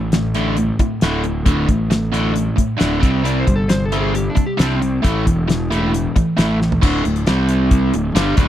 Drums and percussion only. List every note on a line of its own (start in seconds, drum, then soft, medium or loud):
0.12 snare loud
0.12 closed hi-hat medium
0.34 closed hi-hat medium
0.57 closed hi-hat medium
0.79 kick medium
0.79 closed hi-hat medium
1.01 snare loud
1.01 closed hi-hat medium
1.24 closed hi-hat medium
1.46 kick medium
1.46 closed hi-hat medium
1.68 kick medium
1.68 closed hi-hat medium
1.91 snare loud
1.91 closed hi-hat medium
2.14 closed hi-hat medium
2.36 closed hi-hat medium
2.58 kick medium
2.58 closed hi-hat medium
2.80 snare medium
2.80 closed hi-hat medium
3.03 kick medium
3.03 closed hi-hat medium
3.25 closed hi-hat medium
3.47 kick medium
3.47 closed hi-hat soft
3.69 snare loud
3.69 closed hi-hat medium
3.92 closed hi-hat medium
4.15 closed hi-hat medium
4.37 kick medium
4.37 closed hi-hat soft
4.59 snare loud
4.59 closed hi-hat medium
4.82 closed hi-hat medium
5.04 kick medium
5.04 closed hi-hat medium
5.27 kick medium
5.27 closed hi-hat medium
5.50 snare medium
5.50 closed hi-hat medium
5.72 closed hi-hat medium
5.94 closed hi-hat medium
6.16 kick medium
6.16 closed hi-hat medium
6.38 snare medium
6.38 closed hi-hat medium
6.62 snare medium
6.72 floor tom medium
6.83 kick loud
6.83 crash loud
7.05 closed hi-hat medium
7.16 closed hi-hat medium
7.27 snare loud
7.27 closed hi-hat medium
7.49 closed hi-hat medium
7.71 kick medium
7.71 closed hi-hat medium
7.94 closed hi-hat medium
8.16 snare loud
8.16 closed hi-hat medium
8.37 kick loud
8.37 closed hi-hat medium